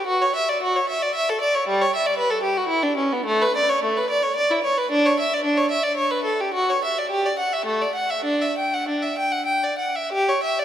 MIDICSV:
0, 0, Header, 1, 2, 480
1, 0, Start_track
1, 0, Key_signature, 2, "major"
1, 0, Tempo, 548948
1, 54, Time_signature, 3, 2, 24, 8
1, 1010, Tempo, 522648
1, 2450, Tempo, 554017
1, 3410, Tempo, 530035
1, 5330, Tempo, 566572
1, 6770, Tempo, 613497
1, 9114, End_track
2, 0, Start_track
2, 0, Title_t, "Violin"
2, 0, Program_c, 0, 40
2, 55, Note_on_c, 0, 66, 74
2, 180, Note_off_c, 0, 66, 0
2, 189, Note_on_c, 0, 73, 66
2, 307, Note_off_c, 0, 73, 0
2, 309, Note_on_c, 0, 76, 63
2, 423, Note_off_c, 0, 76, 0
2, 424, Note_on_c, 0, 74, 58
2, 542, Note_off_c, 0, 74, 0
2, 545, Note_on_c, 0, 66, 68
2, 659, Note_off_c, 0, 66, 0
2, 662, Note_on_c, 0, 73, 64
2, 779, Note_off_c, 0, 73, 0
2, 782, Note_on_c, 0, 76, 61
2, 892, Note_on_c, 0, 74, 68
2, 895, Note_off_c, 0, 76, 0
2, 1005, Note_on_c, 0, 76, 79
2, 1010, Note_off_c, 0, 74, 0
2, 1127, Note_off_c, 0, 76, 0
2, 1135, Note_on_c, 0, 69, 72
2, 1243, Note_on_c, 0, 74, 65
2, 1255, Note_off_c, 0, 69, 0
2, 1367, Note_off_c, 0, 74, 0
2, 1367, Note_on_c, 0, 73, 62
2, 1491, Note_on_c, 0, 55, 79
2, 1492, Note_off_c, 0, 73, 0
2, 1612, Note_off_c, 0, 55, 0
2, 1614, Note_on_c, 0, 73, 76
2, 1736, Note_off_c, 0, 73, 0
2, 1743, Note_on_c, 0, 76, 62
2, 1841, Note_on_c, 0, 74, 69
2, 1859, Note_off_c, 0, 76, 0
2, 1950, Note_on_c, 0, 71, 73
2, 1969, Note_off_c, 0, 74, 0
2, 2061, Note_on_c, 0, 69, 68
2, 2079, Note_off_c, 0, 71, 0
2, 2178, Note_on_c, 0, 67, 62
2, 2196, Note_off_c, 0, 69, 0
2, 2309, Note_on_c, 0, 66, 69
2, 2311, Note_off_c, 0, 67, 0
2, 2413, Note_on_c, 0, 64, 76
2, 2439, Note_off_c, 0, 66, 0
2, 2538, Note_on_c, 0, 62, 69
2, 2545, Note_off_c, 0, 64, 0
2, 2663, Note_on_c, 0, 61, 57
2, 2671, Note_off_c, 0, 62, 0
2, 2794, Note_off_c, 0, 61, 0
2, 2794, Note_on_c, 0, 59, 58
2, 2909, Note_on_c, 0, 57, 80
2, 2926, Note_off_c, 0, 59, 0
2, 3043, Note_off_c, 0, 57, 0
2, 3048, Note_on_c, 0, 71, 74
2, 3173, Note_off_c, 0, 71, 0
2, 3177, Note_on_c, 0, 74, 71
2, 3290, Note_on_c, 0, 73, 70
2, 3292, Note_off_c, 0, 74, 0
2, 3408, Note_off_c, 0, 73, 0
2, 3413, Note_on_c, 0, 57, 66
2, 3529, Note_off_c, 0, 57, 0
2, 3532, Note_on_c, 0, 71, 63
2, 3649, Note_off_c, 0, 71, 0
2, 3653, Note_on_c, 0, 74, 66
2, 3766, Note_off_c, 0, 74, 0
2, 3771, Note_on_c, 0, 73, 68
2, 3886, Note_off_c, 0, 73, 0
2, 3887, Note_on_c, 0, 74, 75
2, 4002, Note_off_c, 0, 74, 0
2, 4023, Note_on_c, 0, 64, 68
2, 4134, Note_off_c, 0, 64, 0
2, 4140, Note_on_c, 0, 73, 61
2, 4251, Note_off_c, 0, 73, 0
2, 4266, Note_on_c, 0, 71, 65
2, 4377, Note_off_c, 0, 71, 0
2, 4388, Note_on_c, 0, 62, 89
2, 4496, Note_off_c, 0, 62, 0
2, 4516, Note_on_c, 0, 73, 70
2, 4622, Note_off_c, 0, 73, 0
2, 4645, Note_on_c, 0, 76, 67
2, 4744, Note_off_c, 0, 76, 0
2, 4772, Note_on_c, 0, 74, 67
2, 4869, Note_off_c, 0, 74, 0
2, 4869, Note_on_c, 0, 62, 67
2, 4976, Note_off_c, 0, 62, 0
2, 4985, Note_on_c, 0, 73, 66
2, 5097, Note_off_c, 0, 73, 0
2, 5107, Note_on_c, 0, 76, 64
2, 5216, Note_off_c, 0, 76, 0
2, 5221, Note_on_c, 0, 74, 65
2, 5336, Note_off_c, 0, 74, 0
2, 5346, Note_on_c, 0, 73, 69
2, 5452, Note_off_c, 0, 73, 0
2, 5460, Note_on_c, 0, 71, 63
2, 5573, Note_off_c, 0, 71, 0
2, 5575, Note_on_c, 0, 69, 58
2, 5691, Note_off_c, 0, 69, 0
2, 5712, Note_on_c, 0, 67, 55
2, 5827, Note_off_c, 0, 67, 0
2, 5827, Note_on_c, 0, 66, 74
2, 5943, Note_off_c, 0, 66, 0
2, 5961, Note_on_c, 0, 73, 67
2, 6069, Note_off_c, 0, 73, 0
2, 6083, Note_on_c, 0, 76, 58
2, 6186, Note_off_c, 0, 76, 0
2, 6202, Note_on_c, 0, 74, 55
2, 6305, Note_off_c, 0, 74, 0
2, 6307, Note_on_c, 0, 67, 70
2, 6414, Note_off_c, 0, 67, 0
2, 6435, Note_on_c, 0, 74, 63
2, 6542, Note_off_c, 0, 74, 0
2, 6547, Note_on_c, 0, 78, 55
2, 6656, Note_off_c, 0, 78, 0
2, 6664, Note_on_c, 0, 76, 61
2, 6772, Note_on_c, 0, 57, 69
2, 6778, Note_off_c, 0, 76, 0
2, 6883, Note_off_c, 0, 57, 0
2, 6898, Note_on_c, 0, 74, 52
2, 7004, Note_on_c, 0, 78, 50
2, 7007, Note_off_c, 0, 74, 0
2, 7118, Note_off_c, 0, 78, 0
2, 7120, Note_on_c, 0, 76, 54
2, 7234, Note_on_c, 0, 62, 67
2, 7242, Note_off_c, 0, 76, 0
2, 7361, Note_off_c, 0, 62, 0
2, 7367, Note_on_c, 0, 76, 55
2, 7492, Note_off_c, 0, 76, 0
2, 7496, Note_on_c, 0, 79, 52
2, 7616, Note_off_c, 0, 79, 0
2, 7618, Note_on_c, 0, 78, 54
2, 7734, Note_on_c, 0, 62, 51
2, 7739, Note_off_c, 0, 78, 0
2, 7840, Note_on_c, 0, 76, 50
2, 7853, Note_off_c, 0, 62, 0
2, 7967, Note_off_c, 0, 76, 0
2, 7967, Note_on_c, 0, 79, 52
2, 8074, Note_on_c, 0, 78, 54
2, 8086, Note_off_c, 0, 79, 0
2, 8184, Note_on_c, 0, 79, 58
2, 8200, Note_off_c, 0, 78, 0
2, 8314, Note_off_c, 0, 79, 0
2, 8321, Note_on_c, 0, 74, 51
2, 8439, Note_on_c, 0, 78, 48
2, 8452, Note_off_c, 0, 74, 0
2, 8572, Note_on_c, 0, 76, 55
2, 8573, Note_off_c, 0, 78, 0
2, 8703, Note_off_c, 0, 76, 0
2, 8703, Note_on_c, 0, 67, 78
2, 8824, Note_off_c, 0, 67, 0
2, 8831, Note_on_c, 0, 73, 67
2, 8945, Note_off_c, 0, 73, 0
2, 8945, Note_on_c, 0, 76, 61
2, 9054, Note_off_c, 0, 76, 0
2, 9069, Note_on_c, 0, 74, 65
2, 9114, Note_off_c, 0, 74, 0
2, 9114, End_track
0, 0, End_of_file